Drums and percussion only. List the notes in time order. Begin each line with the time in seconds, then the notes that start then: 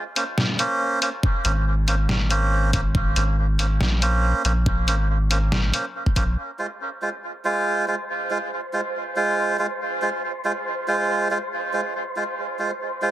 0.16 closed hi-hat
0.38 snare
0.59 closed hi-hat
1.02 closed hi-hat
1.23 kick
1.45 closed hi-hat
1.88 closed hi-hat
2.09 snare
2.30 closed hi-hat
2.73 kick, closed hi-hat
2.95 kick
3.16 closed hi-hat
3.59 closed hi-hat
3.81 snare
4.02 closed hi-hat
4.45 closed hi-hat
4.66 kick
4.88 closed hi-hat
5.31 closed hi-hat
5.52 snare
5.74 closed hi-hat
6.06 kick
6.16 kick, closed hi-hat